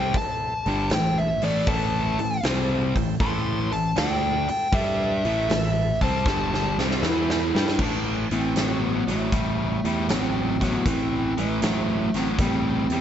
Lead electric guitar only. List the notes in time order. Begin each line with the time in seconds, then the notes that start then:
Already playing: G5
0.17 A5
0.94 G5
1.18 E5
1.44 D5
1.67 A5
3.21 C6
3.73 A5
3.98 G5
4.50 G5
4.74 E5
6.02 A5
7.02 E4
7.79 D4
8.32 C4
8.82 B3
9.09 A3
9.85 A3
10.11 C4
10.65 B3
10.88 C4
11.40 A3
12.16 C4
12.40 C4